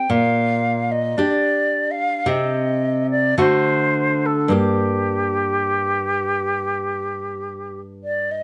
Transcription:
Already playing: G5
0.10 A#2 F5
0.91 D#5
1.17 D4 G4 D5
1.91 F5
2.26 C3 C4 G4 D#5
3.11 D5
3.38 D3 A3 F#4 C5
4.26 A4
4.48 G2 A#3 G4
4.56 G4
8.04 D5
8.31 D#5

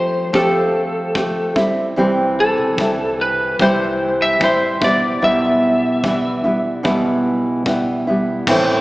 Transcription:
Already playing: F3 A3 C4 G4 C5
0.33 F3 A3 C4 G4 A4, kick
1.15 F3 A3 C4 G4, kick
1.56 G3 C4 E4, kick
1.96 C2 C3 E3 G3 C4 E4
2.40 A4
2.58 B1
2.78 C2 E3 G3 C4 E4, kick
3.21 B4
3.59 C2 C3 E3 G3 C4 E4 C5, kick
4.22 E5
4.40 A1 E3 G3 C4 E4, kick
4.44 C5
4.81 B1 G3 B3 E4 D5, kick
5.21 B1 B2 E3 G3 B3 E4 E5
6.03 E3 G3 B3 E4, kick
6.44 B1 G3 B3 E4
6.83 B1 B2 E3 G3 B3 E4, kick
7.65 E3 G3 B3 E4, kick
8.07 G3 B3 E4
8.47 A1 A2 E3 A3 C4 E4, kick, crash

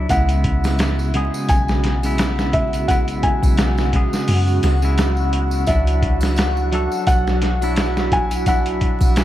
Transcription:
Already playing: E4 E5
0.09 C#2 C#3 G#3 B3 E4 F#4 F#5, kick, closed hi-hat, tambourine
0.29 closed hi-hat, tambourine
0.44 kick, closed hi-hat
0.64 snare, tambourine, triangle
0.79 snare, closed hi-hat, tambourine
0.99 tambourine
1.14 C#3 G#3 B3 G#4, closed hi-hat
1.34 tambourine
1.49 B1 G#5, kick, closed hi-hat, tambourine
1.68 snare, tambourine
1.84 snare, closed hi-hat
2.03 C#3 G#3 B3 E4, tambourine, triangle
2.18 snare, closed hi-hat, tambourine
2.39 snare, tambourine
2.53 E5, kick, closed hi-hat
2.73 closed hi-hat, tambourine
2.88 C#3 G#3 B3 E4 F#5, kick, closed hi-hat, tambourine
3.08 closed hi-hat, tambourine
3.23 G#5, kick, closed hi-hat
3.43 B1, kick, tambourine, triangle
3.58 snare, closed hi-hat, tambourine
3.78 snare, tambourine
3.93 C#3 G#3 B3 G#4, kick, closed hi-hat
4.13 snare, tambourine
4.28 F#2, open hi-hat, tambourine
4.47 tambourine
4.63 C#2, snare, closed hi-hat, triangle
4.82 C#3 G#3 B3 E4, tambourine
4.98 snare, closed hi-hat, tambourine
5.17 tambourine
5.33 closed hi-hat
5.51 tambourine
5.67 C#2 F#3 D4 E4 E5, kick, closed hi-hat, tambourine
5.87 closed hi-hat, tambourine
6.02 kick, closed hi-hat
6.21 snare, tambourine, triangle
6.36 snare, closed hi-hat, tambourine
6.57 tambourine
6.72 F#3 D4 A4, closed hi-hat
6.92 tambourine
7.07 B1 F#5, kick, closed hi-hat, tambourine
7.27 snare, tambourine
7.42 snare, closed hi-hat
7.62 F#3 D4 E4, tambourine, triangle
7.76 snare, closed hi-hat, tambourine
7.97 snare, tambourine
8.12 G#5, kick, closed hi-hat
8.31 closed hi-hat, tambourine
8.46 F#3 D4 E4 F#5, kick, closed hi-hat, tambourine
8.66 closed hi-hat, tambourine
8.81 kick, closed hi-hat
9.01 B1, kick, tambourine, triangle
9.16 snare, closed hi-hat, tambourine

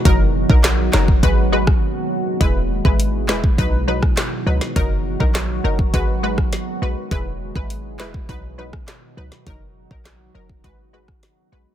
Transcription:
Already playing: F#3 D#4
0.05 F#1 C#3 F#3 A#3 D#4 F#4 A#4, kick, closed hi-hat
0.49 A#1 F#3 D#4 A#4, kick
0.64 snare, clap, closed hi-hat
0.93 F#1 F#3 D#4 A#4, snare, clap
1.08 kick
1.23 G#1 D#3 G#3 B3 F#4 B4, kick, closed hi-hat
1.52 G#3 F#4 B4
1.67 kick, cross-stick
2.41 E1 B2 E3 G#3 E4 G#4 B4, kick, closed hi-hat
2.85 G#1 G#3 E4 B4, kick
3.00 closed hi-hat
3.29 E1 G#3 E4 B4, snare, clap
3.44 kick
3.58 B1 D#3 F#3 D#4 F#4 B4, kick, closed hi-hat
3.88 F#3 D#4 B4
4.03 kick, cross-stick
4.17 snare, clap, closed hi-hat
4.46 C#2 F#3 D#4 B4
4.61 snare
4.76 F#1 C#3 F#3 A#3 D#4 A#4, kick, closed hi-hat
5.20 A#1 F#3 D#4 A#4, kick
5.35 snare, clap, closed hi-hat
5.64 F#1 F#3 D#4 A#4
5.79 kick
5.94 G#1 D#3 G#3 B3 F#4 B4, kick, closed hi-hat
6.23 G#3 F#4 B4
6.38 kick, cross-stick
6.53 snare, closed hi-hat
6.82 A#1 G#3 F#4 B4
7.11 E1 B2 E3 G#3 E4 G#4 B4, kick, closed hi-hat
7.55 G#1 G#3 E4 B4, kick
7.70 closed hi-hat
7.99 E1 G#3 E4 B4, snare, clap
8.14 kick
8.29 B1 D#3 F#3 D#4 F#4 B4, kick, closed hi-hat
8.58 F#3 D#4 B4
8.73 kick, cross-stick
8.88 snare, clap, closed hi-hat
9.17 C#2 F#3 D#4 B4
9.32 snare
9.47 F#1 C#3 F#3 A#3 D#4 A#4, kick, closed hi-hat
9.91 A#1 F#3 D#4 A#4, kick
10.05 snare, clap, closed hi-hat
10.34 F#1 F#3 D#4 A#4
10.49 kick
10.64 G#1 D#3 F#3 G#3 B3 F#4 B4, kick, closed hi-hat
10.93 G#3 F#4 B4
11.08 kick, cross-stick
11.23 snare, closed hi-hat
11.52 A#1 G#3 F#4 B4

